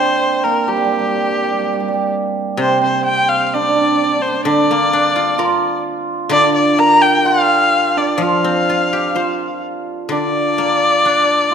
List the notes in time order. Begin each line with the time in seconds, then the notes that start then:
Already playing: D3 A#3 C4 D4 F4 C5
0.43 A#3 A#4
0.68 G3 G4
0.77 G3
0.84 G3
0.92 G3
0.99 G3
1.08 G3
1.16 G3
1.22 G3
1.30 G3
1.37 G3
1.44 G3
1.51 G3
1.59 G3
1.64 G3
1.73 G3
1.80 G3
1.88 G3
1.94 G3
2.57 C3 C4 C5
2.81 C4 C5
3.04 G5
3.29 F5
3.46 F5
3.53 D4 D5
3.61 D4
3.69 D4
3.75 D4
3.81 D4
3.90 D4
3.97 D4
4.04 D4
4.12 D4
4.20 D4 C5
4.28 D4
4.34 D4
4.45 D3 D4 D5
4.71 A#3
4.93 D4
5.16 F4
5.38 F4 A#4
6.29 D3 D4 D5
6.54 D5
6.78 A#4 A#5
7.02 G5
7.17 G4
7.25 F4 F5
7.97 D4 D5
8.18 F3 F5
8.22 F4
8.44 C4
8.69 F4
8.93 G4
9.15 F4 C5
10.09 D3 D4 D5
10.58 A#3
11.05 D4
11.51 F4